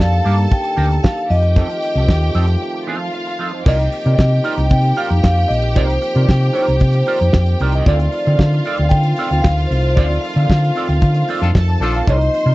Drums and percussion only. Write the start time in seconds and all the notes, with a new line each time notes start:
0.00 snare
0.13 closed hi-hat
0.26 open hi-hat
0.38 closed hi-hat
0.51 kick, closed hi-hat
0.64 closed hi-hat
0.77 open hi-hat
0.92 closed hi-hat
1.04 kick, snare
1.17 closed hi-hat
1.31 open hi-hat
1.43 closed hi-hat
1.56 kick, closed hi-hat
1.70 closed hi-hat
1.82 open hi-hat
1.96 closed hi-hat
2.08 kick, snare
2.22 closed hi-hat
2.35 open hi-hat
2.48 closed hi-hat
3.66 kick, crash
3.80 closed hi-hat
3.92 open hi-hat
4.06 closed hi-hat
4.19 kick, snare
4.33 closed hi-hat
4.44 open hi-hat
4.57 closed hi-hat
4.70 kick, closed hi-hat
4.83 closed hi-hat
4.96 open hi-hat
5.11 closed hi-hat
5.24 kick, snare
5.37 closed hi-hat
5.50 open hi-hat
5.62 closed hi-hat
5.76 kick, closed hi-hat
5.90 closed hi-hat
6.02 open hi-hat
6.16 closed hi-hat
6.29 kick, snare
6.43 closed hi-hat
6.55 open hi-hat
6.68 closed hi-hat
6.80 kick, closed hi-hat
6.93 closed hi-hat
7.06 open hi-hat
7.21 closed hi-hat
7.33 kick, snare
7.46 closed hi-hat
7.60 open hi-hat
7.72 closed hi-hat
7.86 kick, closed hi-hat
8.00 closed hi-hat
8.12 open hi-hat
8.27 closed hi-hat
8.39 kick, snare
8.53 closed hi-hat
8.65 open hi-hat
8.78 closed hi-hat
8.90 kick, closed hi-hat
9.03 closed hi-hat
9.16 open hi-hat
9.32 closed hi-hat
9.44 kick, snare
9.58 closed hi-hat
9.72 open hi-hat
9.84 closed hi-hat
9.97 kick, closed hi-hat
10.11 closed hi-hat
10.24 open hi-hat
10.38 closed hi-hat
10.50 kick, snare
10.64 closed hi-hat
10.76 open hi-hat
10.89 closed hi-hat
11.02 kick, closed hi-hat
11.14 closed hi-hat
11.28 open hi-hat
11.43 closed hi-hat
11.55 kick, snare
11.69 closed hi-hat
11.82 open hi-hat
11.94 closed hi-hat
12.07 kick, closed hi-hat
12.21 closed hi-hat
12.34 open hi-hat
12.48 closed hi-hat